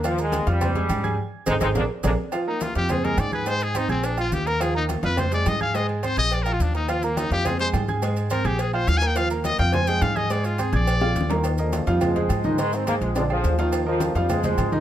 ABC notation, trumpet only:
X:1
M:4/4
L:1/16
Q:1/4=210
K:Eb
V:1 name="Trumpet"
z16 | z16 | z2 E2 F2 G2 A2 B2 d2 _c2 | c2 A2 E2 C2 D2 F2 G2 B2 |
A2 E2 z2 _c2 =c2 d2 e2 f2 | e2 A2 c2 e2 (3d2 B2 F2 D2 E2 | F2 B,2 E2 G2 A2 c2 z4 | z4 B2 G2 A2 c2 (3f2 a2 g2 |
f2 B2 e2 g2 a2 g2 f2 e2 | d2 F2 A2 d8- d z | z16 | z16 |
z16 |]